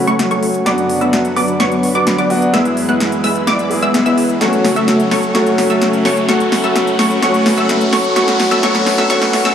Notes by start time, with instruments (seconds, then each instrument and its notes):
Already playing: analog synth pad C#3 A3 C#5 G#5, grand piano F#3 A3 C#4 F#4, riser
0.07 supersaw synth F#3 A3 C#4 A4 C#5, synth pluck C#6, closed hi-hat
0.19 snare, closed hi-hat
0.31 supersaw synth F#3 A3 C#4 A4 C#5, synth pluck C#6, closed hi-hat
0.43 open hi-hat
0.54 closed hi-hat
0.65 analog synth pad F#2 D3 B3 F#4 B4, grand piano F#3 B3 D4 F#4, supersaw synth F#3 B3 D4 B4 D5, synth pluck D6, snare, closed hi-hat
0.78 closed hi-hat
0.89 open hi-hat
1.01 supersaw synth F#3 B3 D4 B4 E5, synth pluck E6, closed hi-hat
1.13 snare, closed hi-hat
1.25 closed hi-hat
1.36 supersaw synth F#3 B3 D4 B4 D5, synth pluck D6, open hi-hat
1.48 closed hi-hat
1.60 supersaw synth F#3 B3 D4 B4 C#5, synth pluck C#6, snare, closed hi-hat
1.72 closed hi-hat
1.83 open hi-hat
1.95 supersaw synth F#3 B3 D4 B4 D5, synth pluck D6, closed hi-hat
2.07 snare, closed hi-hat
2.18 supersaw synth F#3 B3 D4 B4 D5, synth pluck D6, closed hi-hat
2.29 grand piano F#3 B3 D4 F#4, open hi-hat
2.42 closed hi-hat
2.52 analog synth pad F#2 E3 G#4, grand piano G#3 B3 E4 G#4, supersaw synth G#3 B3 E4 B4 E5, synth pluck E6, snare, closed hi-hat
2.65 closed hi-hat
2.77 open hi-hat
2.89 supersaw synth G#3 B3 E4 B4 F#5, synth pluck F#6, closed hi-hat
3.00 snare, closed hi-hat
3.12 closed hi-hat
3.24 supersaw synth G#3 B3 E4 B4 E5, synth pluck E6, open hi-hat
3.36 closed hi-hat
3.47 supersaw synth G#3 B3 E4 B4 D5, synth pluck D6, snare, closed hi-hat
3.59 closed hi-hat
3.69 grand piano G#3 B3 E4 G#4, open hi-hat
3.82 supersaw synth G#3 B3 E4 B4 E5, synth pluck E6, closed hi-hat
3.94 snare, closed hi-hat
4.06 supersaw synth G#3 B3 E4 B4 E5, synth pluck E6, closed hi-hat
4.18 open hi-hat
4.29 closed hi-hat
4.40 analog synth pad C#3 A3 F#4 C#5, grand piano F#3 A3 C#4 F#4, supersaw synth F#3 A3 C#4 A4 C#5, synth pluck C#6, snare, closed hi-hat
4.53 closed hi-hat
4.64 snare, open hi-hat
4.76 supersaw synth F#3 A3 C#4 A4 E5, synth pluck E6, closed hi-hat
4.88 snare, closed hi-hat
5.00 closed hi-hat
5.11 supersaw synth F#3 A3 C#4 A4 C#5, synth pluck C#6, snare, open hi-hat
5.23 closed hi-hat
5.34 grand piano F#3 A3 C#4 F#4, supersaw synth F#3 A3 C#4 A4 C#5, synth pluck C#6, snare, closed hi-hat
5.46 closed hi-hat
5.58 snare, open hi-hat
5.70 supersaw synth F#3 A3 C#4 A4 E5, synth pluck E6, closed hi-hat
5.82 snare, closed hi-hat
5.93 closed hi-hat
6.05 supersaw synth F#3 A3 C#4 A4 C#5, synth pluck C#6, snare, open hi-hat
6.17 closed hi-hat
6.27 grand piano F#3 A3 C#4 F#4, supersaw synth F#3 A3 C#4 A4 C#5, analog synth pad B4, synth pluck C#6, snare, closed hi-hat
6.40 closed hi-hat
6.52 snare, open hi-hat
6.64 supersaw synth F#3 A3 C#4 A4 E5, synth pluck E6, closed hi-hat
6.76 snare, closed hi-hat
6.87 closed hi-hat
6.99 supersaw synth F#3 A3 C#4 A4 C#5, synth pluck C#6, snare, open hi-hat
7.11 closed hi-hat
7.21 grand piano F#3 A3 C#4 F#4, supersaw synth F#3 A3 C#4 A4 C#5, synth pluck C#6, snare, closed hi-hat
7.34 closed hi-hat
7.46 snare, open hi-hat
7.58 supersaw synth F#3 A3 C#4 A4 E5, synth pluck E6, closed hi-hat
7.69 snare, closed hi-hat
7.81 closed hi-hat
7.93 supersaw synth F#3 A3 C#4 A4 C#5, synth pluck C#6, snare, open hi-hat
8.04 closed hi-hat
8.15 analog synth pad F#2 D3 B3, grand piano F#3 A3 C#4 F#4, supersaw synth F#3 A3 C#4 A4 C#5, synth pluck C#6, snare, closed hi-hat
8.28 snare, closed hi-hat
8.40 snare, open hi-hat
8.51 supersaw synth F#3 A3 C#4 A4 E5, synth pluck E6, snare, closed hi-hat
8.62 grand piano F#3 A3 C#4 F#4, supersaw synth F#3 A3 C#4 A4 C#5, synth pluck C#6, snare, closed hi-hat
8.75 snare, closed hi-hat
8.86 snare, open hi-hat
8.98 supersaw synth F#3 A3 C#4 A4 E5, synth pluck E6, snare, closed hi-hat
9.09 grand piano F#3 A3 C#4 F#4, supersaw synth F#3 A3 C#4 A4 C#5, synth pluck C#6, snare, closed hi-hat
9.22 snare, closed hi-hat
9.33 snare, open hi-hat
9.45 supersaw synth F#3 A3 C#4 A4 E5, synth pluck E6, snare